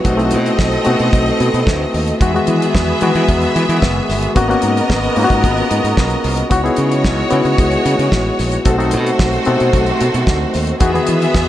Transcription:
Already playing: B4
0.04 B1 C3 A3 C4 D#4 F#4 A4 D#5, kick, closed hi-hat
0.17 A3 C4 D#4 E4, closed hi-hat
0.25 F#4
0.31 B2, closed hi-hat
0.46 closed hi-hat
0.59 B1, kick, snare
0.72 closed hi-hat
0.84 B2 A3 C4 D#4 F#4, closed hi-hat
0.99 B2, closed hi-hat
1.13 B1, kick, closed hi-hat
1.26 closed hi-hat
1.40 B2, closed hi-hat
1.54 B2, closed hi-hat
1.67 D2, kick, snare
1.94 D#2, open hi-hat
2.07 closed hi-hat
2.20 E2 D#3 G#3 B3 D#4 F#4 G#4 E5, kick, closed hi-hat
2.34 D#3 G#3 B3 F#4, closed hi-hat
2.47 E3, closed hi-hat
2.62 closed hi-hat
2.75 E2, kick, snare
3.01 D#3 E3 G#3 B3 F#4, closed hi-hat
3.15 E3, closed hi-hat
3.29 E2, kick, closed hi-hat
3.42 closed hi-hat
3.56 E3, closed hi-hat
3.69 E3, closed hi-hat
3.82 F#1, kick, snare
4.09 G1, snare, open hi-hat
4.22 closed hi-hat
4.35 G#1 B2 C#3 A#3 B3 C#4 F#4 A#4 D#5, kick, closed hi-hat
4.49 A#3 B3 C#4 F#4, closed hi-hat
4.62 G#2, closed hi-hat
4.77 closed hi-hat
4.90 G#1, kick, snare
5.04 closed hi-hat
5.16 G#2 A#3 B3 C#4 F4, open hi-hat
5.24 F#4
5.30 G#2, kick, closed hi-hat
5.44 G#1, kick, closed hi-hat
5.57 closed hi-hat
5.71 G#2, closed hi-hat
5.84 G#2, closed hi-hat
5.97 B1, kick, snare
6.10 closed hi-hat
6.24 C2, open hi-hat
6.37 closed hi-hat
6.50 C#2 E3 F#3 G#3 B3 D#4 E4 F#4 C#5 D#5, kick, closed hi-hat
6.64 B3 D#4 E4 G#4, closed hi-hat
6.76 C#3, closed hi-hat
6.91 closed hi-hat
7.04 C#2, kick, snare
7.30 C#3 B3 D#4 E4 F#4, closed hi-hat
7.45 C#3, closed hi-hat
7.58 C#2, kick, closed hi-hat
7.71 closed hi-hat
7.85 C#3, closed hi-hat
7.99 C#3, closed hi-hat
8.12 A1, kick, snare
8.39 A#1, snare, open hi-hat
8.52 closed hi-hat
8.65 B1 C3 D#3 A3 C4 D#4 F#4 A4 C5, kick, closed hi-hat
8.78 C4 D#4 F#4 A4, closed hi-hat
8.91 B2, closed hi-hat
9.06 closed hi-hat
9.19 B1, kick, snare
9.33 closed hi-hat
9.45 B2 C4 D#4 F#4 A4, closed hi-hat
9.60 B2, closed hi-hat
9.73 B1, kick, closed hi-hat
9.86 closed hi-hat
10.01 B2, closed hi-hat
10.14 B2, closed hi-hat
10.27 D2, kick, snare
10.54 D#2, snare, open hi-hat
10.67 closed hi-hat
10.80 E2 F#3 G#3 B3 D#4 F#4 G#4 E5, kick, closed hi-hat
10.94 D#3 B3 F#4 G#4, closed hi-hat
11.07 E3, closed hi-hat
11.22 closed hi-hat
11.35 E2, kick, snare

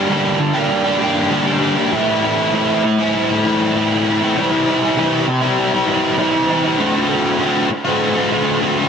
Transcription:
Already playing: D4 G4
0.08 G2 D3 G3 A#3 D4 G4
0.40 muted overdriven electric guitar stroke
0.54 G3 A#3 D4 G4
0.84 G3 A#3 D4 G4
0.98 G3 A#3 D4 G4
1.29 G2 D3 G3 A#3 D4 G4
1.45 G3 A#3 D4 G4
1.60 G3 A#3 D4 G4
1.75 G3 A#3 D4 G4
1.91 A2 E3 A3 C4 E4
2.07 A3 C4 E4
2.20 E3 A3 C4
2.25 E4
2.51 A2 E3 A3 C4 E4
2.84 muted overdriven electric guitar stroke
2.98 A3 C4 E4
3.29 A3 C4 E4
3.45 E3 A3 C4 E4
3.74 A2 E3 A3 C4 E4
3.91 A3 C4 E4
4.04 E3 A3 C4 E4
4.21 A3 C4 E4
4.36 C3 E3 G3 C4 E4
4.50 G3 C4 E4
4.66 E3 G3 C4 E4
4.96 C3 E3 G3 C4 E4
5.27 muted overdriven electric guitar stroke
5.41 G3 C4 E4
5.72 G3 C4 E4
5.86 E3 G3 C4 E4
6.17 C3 E3 G3 C4 E4
6.32 G3 C4 E4
6.48 E3 G3 C4 E4
6.64 G3 C4 E4
6.78 D3 A3 C4 F#4
6.94 C4 F#4
6.98 A3
7.08 D3 A3 C4 F#4
7.38 D3 A3 C4 F#4
7.70 muted overdriven electric guitar stroke
7.85 A3 C4 F#4
8.15 A3 C4 F#4
8.30 D3 A3 C4 F#4
8.60 D3 A3 C4 F#4
8.77 A3 C4 F#4

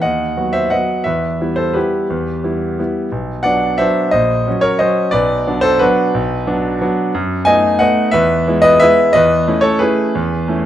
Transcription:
0.02 D#2 D#5 F#5
0.37 F#3 B3 F#4
0.53 C5 E5
0.70 F#3 B3 F#4 D#5 F#5
1.04 E2 B4 E5
1.41 G3 B3 E4
1.56 A4 C5
1.74 G3 B3 E4 G4 B4
2.10 E2
2.44 G3 B3 E4
2.79 G3 B3 E4
3.12 B1
3.43 F#3 B3 D4 D5 F#5
3.78 F#3 B3 D4 C5 E5
4.11 A#1 C5 D#5
4.47 F#3 C#4
4.61 A#4 C#5
4.79 F#3 C#4 C5 D#5
5.11 B1 B4 D5
5.47 F#3 B3 D4
5.61 A4 C5
5.79 F#3 B3 D4 F#4 B4
6.14 B1
6.46 F#3 B3 D4
6.81 F#3 B3 D4
7.14 F#2
7.45 A3 B3 D#4 D#5 G#5
7.79 A3 B3 D#4 D#5 F#5
8.11 E2 B4 E5
8.47 G#3 B3 E4
8.62 B4 D#5
8.80 G#3 B3 E4 B4 E5
9.13 E2 B4 D#5
9.47 A3 C#4 E4
9.61 A4 C#5
9.79 A3 C#4 E4 G#4 B4
10.15 E2
10.48 A3 C#4 E4

